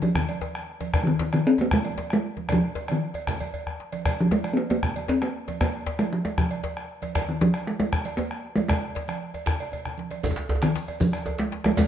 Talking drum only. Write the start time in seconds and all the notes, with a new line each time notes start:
0.03 F3
0.15 D#3
1.03 D#3 F3
1.21 D#3
1.34 D#3
1.47 C4
1.61 A#3
1.73 G#3
2.13 G#3
2.52 F3
2.92 D#3
4.21 F3
4.32 G#3
4.53 A#3 C4
4.71 A#3
5.09 C4
5.22 A#3
5.61 A#3
5.99 G#3
6.13 F3
6.25 G#3
6.38 F3
7.29 D#3
7.41 F3
7.67 G#3
7.80 G#3
8.17 A#3
8.56 G#3
8.68 G#3
10.63 D#3
11.01 F3
11.39 G#3
11.66 G#3
11.79 G#3